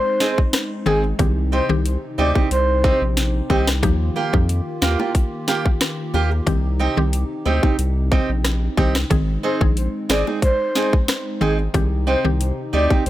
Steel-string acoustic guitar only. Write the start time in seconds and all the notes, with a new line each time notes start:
0.20 C4 D#4 G#4
0.86 C4 D#4 G#4
1.04 muted steel-string acoustic guitar stroke
1.52 C4 D#4 G4
2.18 C4 D#4 G4
2.36 C4 D#4 G4
2.84 C4 D#4 G4
3.50 C4 D#4 G4
4.16 A#3 F4 G4
4.82 A#3 F4 G4
4.99 A#3 F4 G4
5.47 A#3 F4 G4
6.14 A#3 F4 G4
6.31 muted steel-string acoustic guitar stroke
6.79 C4 D#4 G4
7.45 C4 D#4 G4
7.63 C4 D#4 G4
8.12 C4 D#4 G4
8.77 C4 D#4 G4
9.43 C4 D#4 G#4
10.09 C4 D#4 G#4
10.27 C4 D#4 G#4
10.75 C4 D#4 G#4
11.41 C4 D#4 G#4
11.59 muted steel-string acoustic guitar stroke
12.07 C4 D#4 G4
12.73 C4 D#4 G4
12.90 C4 D#4 G4